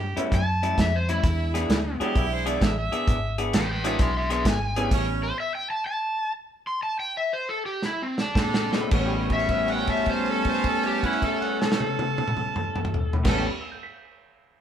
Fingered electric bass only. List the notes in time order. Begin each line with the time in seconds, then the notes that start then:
Already playing: G2
0.17 muted fingered electric bass stroke
0.32 F#2
0.78 F2
1.24 E2
1.69 D2
2.00 muted fingered electric bass stroke
2.16 B1
2.62 A1
3.08 G#1
3.54 A1
4.00 B1
4.45 G#1
4.91 A1
8.36 A#2
8.92 A1
13.26 A1